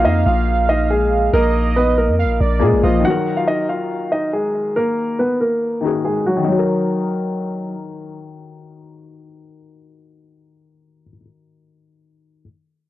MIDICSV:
0, 0, Header, 1, 5, 480
1, 0, Start_track
1, 0, Key_signature, -6, "minor"
1, 0, Tempo, 428571
1, 1494, Time_signature, 4, 2, 24, 8
1, 14445, End_track
2, 0, Start_track
2, 0, Title_t, "Soft synth lead"
2, 0, Program_c, 0, 80
2, 0, Note_on_c, 0, 77, 109
2, 1449, Note_off_c, 0, 77, 0
2, 1495, Note_on_c, 0, 75, 115
2, 2409, Note_off_c, 0, 75, 0
2, 2455, Note_on_c, 0, 77, 82
2, 2682, Note_off_c, 0, 77, 0
2, 2694, Note_on_c, 0, 74, 83
2, 3145, Note_off_c, 0, 74, 0
2, 3175, Note_on_c, 0, 75, 86
2, 3403, Note_off_c, 0, 75, 0
2, 14445, End_track
3, 0, Start_track
3, 0, Title_t, "Grand piano"
3, 0, Program_c, 1, 0
3, 53, Note_on_c, 1, 75, 94
3, 62, Note_on_c, 1, 63, 68
3, 263, Note_off_c, 1, 75, 0
3, 268, Note_off_c, 1, 63, 0
3, 292, Note_on_c, 1, 77, 76
3, 301, Note_on_c, 1, 65, 63
3, 744, Note_off_c, 1, 77, 0
3, 749, Note_off_c, 1, 65, 0
3, 772, Note_on_c, 1, 75, 93
3, 781, Note_on_c, 1, 63, 63
3, 983, Note_off_c, 1, 75, 0
3, 988, Note_off_c, 1, 63, 0
3, 1013, Note_on_c, 1, 68, 81
3, 1022, Note_on_c, 1, 56, 63
3, 1465, Note_off_c, 1, 68, 0
3, 1469, Note_off_c, 1, 56, 0
3, 1495, Note_on_c, 1, 70, 108
3, 1503, Note_on_c, 1, 58, 84
3, 1946, Note_off_c, 1, 70, 0
3, 1950, Note_off_c, 1, 58, 0
3, 1974, Note_on_c, 1, 71, 94
3, 1983, Note_on_c, 1, 59, 67
3, 2184, Note_off_c, 1, 71, 0
3, 2189, Note_off_c, 1, 59, 0
3, 2214, Note_on_c, 1, 70, 78
3, 2224, Note_on_c, 1, 58, 55
3, 2891, Note_off_c, 1, 70, 0
3, 2896, Note_off_c, 1, 58, 0
3, 2934, Note_on_c, 1, 68, 74
3, 2943, Note_on_c, 1, 56, 68
3, 3144, Note_off_c, 1, 68, 0
3, 3149, Note_off_c, 1, 56, 0
3, 3173, Note_on_c, 1, 65, 85
3, 3183, Note_on_c, 1, 53, 68
3, 3384, Note_off_c, 1, 65, 0
3, 3389, Note_off_c, 1, 53, 0
3, 3413, Note_on_c, 1, 78, 100
3, 3422, Note_on_c, 1, 66, 81
3, 3752, Note_off_c, 1, 78, 0
3, 3757, Note_off_c, 1, 66, 0
3, 3772, Note_on_c, 1, 77, 81
3, 3781, Note_on_c, 1, 65, 63
3, 3878, Note_off_c, 1, 77, 0
3, 3883, Note_off_c, 1, 65, 0
3, 3893, Note_on_c, 1, 75, 89
3, 3902, Note_on_c, 1, 63, 67
3, 4103, Note_off_c, 1, 75, 0
3, 4108, Note_off_c, 1, 63, 0
3, 4133, Note_on_c, 1, 77, 79
3, 4142, Note_on_c, 1, 65, 61
3, 4585, Note_off_c, 1, 77, 0
3, 4589, Note_off_c, 1, 65, 0
3, 4612, Note_on_c, 1, 75, 82
3, 4621, Note_on_c, 1, 63, 64
3, 4823, Note_off_c, 1, 75, 0
3, 4828, Note_off_c, 1, 63, 0
3, 4853, Note_on_c, 1, 68, 77
3, 4862, Note_on_c, 1, 56, 61
3, 5305, Note_off_c, 1, 68, 0
3, 5309, Note_off_c, 1, 56, 0
3, 5333, Note_on_c, 1, 70, 103
3, 5342, Note_on_c, 1, 58, 84
3, 5785, Note_off_c, 1, 70, 0
3, 5789, Note_off_c, 1, 58, 0
3, 5813, Note_on_c, 1, 71, 81
3, 5822, Note_on_c, 1, 59, 64
3, 6024, Note_off_c, 1, 71, 0
3, 6029, Note_off_c, 1, 59, 0
3, 6054, Note_on_c, 1, 70, 71
3, 6062, Note_on_c, 1, 58, 59
3, 6731, Note_off_c, 1, 70, 0
3, 6735, Note_off_c, 1, 58, 0
3, 6773, Note_on_c, 1, 68, 80
3, 6783, Note_on_c, 1, 56, 62
3, 6984, Note_off_c, 1, 68, 0
3, 6989, Note_off_c, 1, 56, 0
3, 7015, Note_on_c, 1, 66, 82
3, 7023, Note_on_c, 1, 54, 61
3, 7224, Note_off_c, 1, 66, 0
3, 7229, Note_off_c, 1, 54, 0
3, 7253, Note_on_c, 1, 54, 82
3, 8649, Note_off_c, 1, 54, 0
3, 14445, End_track
4, 0, Start_track
4, 0, Title_t, "Felt piano"
4, 0, Program_c, 2, 0
4, 0, Control_c, 2, 64, 127
4, 0, Note_on_c, 2, 58, 72
4, 0, Note_on_c, 2, 63, 73
4, 0, Note_on_c, 2, 68, 64
4, 0, Note_on_c, 2, 75, 82
4, 2858, Note_off_c, 2, 58, 0
4, 2878, Note_off_c, 2, 63, 0
4, 2899, Note_off_c, 2, 68, 0
4, 2905, Note_on_c, 2, 58, 53
4, 2920, Note_off_c, 2, 75, 0
4, 2926, Note_on_c, 2, 65, 50
4, 2946, Note_on_c, 2, 68, 49
4, 2967, Note_on_c, 2, 75, 63
4, 3351, Note_on_c, 2, 51, 66
4, 3392, Note_on_c, 2, 63, 58
4, 3400, Note_off_c, 2, 58, 0
4, 3410, Note_off_c, 2, 65, 0
4, 3420, Note_off_c, 2, 68, 0
4, 3427, Control_c, 2, 64, 0
4, 3430, Note_off_c, 2, 75, 0
4, 3434, Note_on_c, 2, 54, 60
4, 3475, Note_on_c, 2, 70, 77
4, 3625, Control_c, 2, 64, 127
4, 6457, Note_off_c, 2, 51, 0
4, 6478, Note_off_c, 2, 63, 0
4, 6499, Note_off_c, 2, 54, 0
4, 6505, Note_on_c, 2, 51, 46
4, 6519, Note_off_c, 2, 70, 0
4, 6526, Note_on_c, 2, 63, 46
4, 6546, Note_on_c, 2, 66, 45
4, 6567, Note_on_c, 2, 68, 55
4, 7114, Note_off_c, 2, 51, 0
4, 7131, Note_on_c, 2, 51, 82
4, 7197, Note_off_c, 2, 63, 0
4, 7213, Note_on_c, 2, 63, 74
4, 7260, Note_off_c, 2, 66, 0
4, 7268, Control_c, 2, 64, 0
4, 7270, Note_off_c, 2, 68, 0
4, 7296, Note_on_c, 2, 66, 72
4, 7379, Note_on_c, 2, 70, 86
4, 7488, Control_c, 2, 64, 127
4, 12322, Note_off_c, 2, 51, 0
4, 12405, Note_off_c, 2, 63, 0
4, 12487, Note_off_c, 2, 66, 0
4, 12570, Note_off_c, 2, 70, 0
4, 13907, Control_c, 2, 64, 0
4, 14445, End_track
5, 0, Start_track
5, 0, Title_t, "808-style bass"
5, 0, Program_c, 3, 38
5, 54, Note_on_c, 3, 41, 101
5, 282, Note_off_c, 3, 41, 0
5, 293, Note_on_c, 3, 34, 103
5, 1449, Note_off_c, 3, 34, 0
5, 1493, Note_on_c, 3, 34, 108
5, 2334, Note_on_c, 3, 41, 102
5, 2351, Note_off_c, 3, 34, 0
5, 2514, Note_on_c, 3, 34, 100
5, 2531, Note_off_c, 3, 41, 0
5, 2685, Note_off_c, 3, 34, 0
5, 2694, Note_on_c, 3, 34, 107
5, 2934, Note_on_c, 3, 46, 97
5, 2951, Note_off_c, 3, 34, 0
5, 3054, Note_on_c, 3, 34, 98
5, 3071, Note_off_c, 3, 46, 0
5, 3168, Note_off_c, 3, 34, 0
5, 3174, Note_on_c, 3, 34, 104
5, 3405, Note_off_c, 3, 34, 0
5, 14445, End_track
0, 0, End_of_file